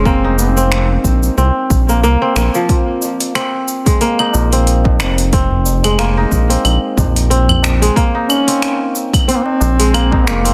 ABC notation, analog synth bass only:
X:1
M:4/4
L:1/8
Q:"Swing 16ths" 1/4=91
K:Fm
V:1 name="Analog synth bass" clef=bass
F,,,3 B,,, C,, B,,, C,, B,,, | z4 z B,,,2 F,,,- | F,,,3 B,,, B,,, B,,,3 | z4 z B,,,2 F,,, |]